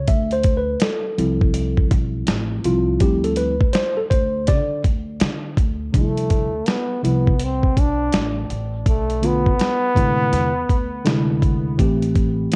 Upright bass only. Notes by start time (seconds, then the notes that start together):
0.08 D2
1.19 C2
1.91 B1
2.28 A1
2.64 C2
3.01 D2
4.11 D2
4.48 D3
4.85 D2
5.21 D3
5.57 D2
5.94 D2
7.04 C2
7.77 B1
8.14 A1
8.50 A1
8.86 B1
9.97 A1
10.33 E2
10.70 D2
11.79 A1